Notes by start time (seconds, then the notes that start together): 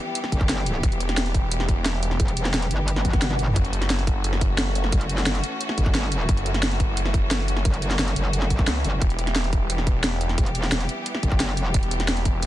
Already playing: E3 G3 B3 G4
0.15 closed hi-hat
0.24 snare
0.32 F#1, kick, closed hi-hat
0.41 kick
0.49 snare, closed hi-hat
0.66 closed hi-hat
0.83 E1, kick, closed hi-hat
0.92 closed hi-hat
1.00 closed hi-hat
1.09 snare, closed hi-hat
1.17 snare, closed hi-hat
1.26 closed hi-hat
1.34 kick, closed hi-hat
1.51 closed hi-hat
1.60 snare
1.69 kick, closed hi-hat
1.86 snare, closed hi-hat
2.03 closed hi-hat
2.11 snare
2.20 E1, kick, closed hi-hat
2.28 closed hi-hat
2.37 closed hi-hat
2.45 snare, closed hi-hat
2.54 snare, closed hi-hat
2.62 closed hi-hat
2.71 G1, closed hi-hat
2.88 closed hi-hat, swell
2.96 snare
3.05 kick, closed hi-hat, high tom
3.13 kick, snare, closed hi-hat
3.22 snare, closed hi-hat, mid tom
3.30 snare, mid tom
3.39 closed hi-hat
3.48 mid tom
3.56 F#1 E3 A3 C#4 F#4, kick, closed hi-hat
3.65 closed hi-hat
3.73 closed hi-hat
3.82 snare, closed hi-hat
3.90 snare, closed hi-hat
3.99 closed hi-hat
4.07 kick, closed hi-hat
4.24 closed hi-hat
4.33 snare
4.41 kick, closed hi-hat
4.58 snare, closed hi-hat
4.75 closed hi-hat
4.84 snare
4.92 F#1, kick, closed hi-hat
5.01 closed hi-hat
5.09 closed hi-hat
5.18 snare, closed hi-hat
5.26 snare, closed hi-hat
5.35 closed hi-hat
5.44 closed hi-hat
5.61 closed hi-hat
5.69 snare
5.78 G1, kick, closed hi-hat
5.86 kick
5.95 snare, closed hi-hat
6.12 closed hi-hat
6.29 F#1, kick, closed hi-hat
6.37 closed hi-hat
6.46 closed hi-hat
6.54 snare, closed hi-hat
6.63 snare, closed hi-hat
6.71 closed hi-hat
6.80 kick, closed hi-hat
6.97 closed hi-hat
7.06 snare
7.14 kick, closed hi-hat
7.31 snare, closed hi-hat
7.48 closed hi-hat
7.57 snare
7.65 F#1, kick, closed hi-hat
7.74 closed hi-hat
7.82 closed hi-hat
7.91 snare, closed hi-hat
7.99 snare, closed hi-hat
8.08 closed hi-hat
8.16 F#1, closed hi-hat
8.33 closed hi-hat
8.42 snare
8.50 kick, closed hi-hat
8.59 kick, snare
8.67 C#2, snare, closed hi-hat
8.84 F#1, closed hi-hat
9.02 E1 G3 B3 G4, kick, closed hi-hat
9.10 closed hi-hat
9.19 closed hi-hat
9.27 snare, closed hi-hat
9.36 snare, closed hi-hat
9.44 closed hi-hat
9.53 kick, closed hi-hat
9.70 closed hi-hat
9.78 snare
9.87 kick, closed hi-hat
10.04 snare, closed hi-hat
10.21 closed hi-hat
10.29 snare
10.38 E1, kick, closed hi-hat
10.46 closed hi-hat
10.55 closed hi-hat
10.64 snare, closed hi-hat
10.72 snare, closed hi-hat
10.81 closed hi-hat
10.89 closed hi-hat
11.06 closed hi-hat
11.15 snare
11.23 F#1, kick, closed hi-hat
11.32 kick
11.40 snare, closed hi-hat
11.57 closed hi-hat
11.74 E1, kick, closed hi-hat
11.83 closed hi-hat
11.91 closed hi-hat
12.00 snare, closed hi-hat
12.08 snare, closed hi-hat
12.17 closed hi-hat
12.25 kick, closed hi-hat
12.42 closed hi-hat